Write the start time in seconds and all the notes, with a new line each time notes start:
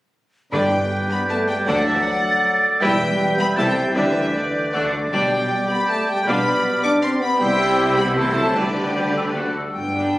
0.52 G1 G2 D3 G3 D4 B4 D5 G5 G6
1.10 B3 B5
1.29 A3 A5
1.47 G3 G5
1.66 D2 D3 F#3 D4 A4 D5 F#5 A6
1.85 E3 E5
1.94 F#3 F#5
2.80 E1 E2 G3 E4 G4 B4 E5 G5 G6
3.37 B3 B5
3.56 C2 C3 G3 A3 E4 G4 A4 C5 A5 A6
3.65 G3 G5
3.76 G3 G5
3.95 D2 D3 E3 G3 D4 G4 B4 D5 E5 G6
4.34 D3 D5
4.73 D2 D3 A3 D4 F#4 A4 D5 F#6
5.12 B1 B2 G3 D4 G4 D5 G5 G6
5.69 B3 B5
5.89 A3 A5
6.08 G3 G5
6.27 B1 B2 G3 B3 D4 F4 D5 B5 F6
6.84 D4 D6
7.02 C4 C6
7.20 B3 B5
7.40 C2 C3 G3 E4 G4 C5 G5 E6
7.98 B3 B5
8.16 E3 A3 E4 A4 C5 A5 E6
8.36 F#3 F#4
8.56 D2 D3 G3 D4 G4 B4 D5 D6
8.96 G6
9.17 E6
9.36 A3 D4 F#4 A4 F#6
9.56 E6
9.74 G1 G2 B3 D4 G5
9.94 G3 D4 B4
10.13 G1 G2